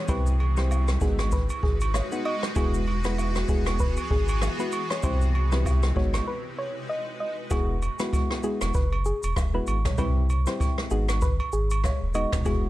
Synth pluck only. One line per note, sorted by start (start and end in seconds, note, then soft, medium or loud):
0.09 0.24 B4 loud
0.58 0.69 C5 medium
1.02 1.17 G#4 medium
1.32 1.48 B4 medium
1.63 1.78 G#4 medium
1.94 2.09 C#5 medium
2.25 2.40 D#5 medium
2.56 2.71 G#4 loud
3.05 3.16 B4 medium
3.49 3.64 G#4 medium
3.80 3.95 B4 medium
4.11 4.26 G#4 medium
4.60 4.71 B4 medium
4.91 5.02 C#5 medium
5.04 5.19 C5 loud
5.53 5.63 B4 medium
5.97 6.12 C#5 medium
6.27 6.42 B4 medium
6.58 6.73 C#5 medium
6.89 7.04 D#5 medium
7.20 7.35 D#5 medium
7.51 7.66 G#4 loud
8.00 8.11 B4 medium
8.44 8.59 G#4 medium
8.75 8.90 B4 medium
9.06 9.21 G#4 medium
9.54 9.65 B4 medium
9.85 9.96 C#5 medium
9.98 10.13 B4 loud
10.47 10.58 C5 medium
10.91 11.06 G#4 medium
11.22 11.37 B4 medium
11.53 11.68 G#4 medium
11.84 11.99 C#5 medium
12.15 12.30 D#5 medium
12.46 12.61 G#4 loud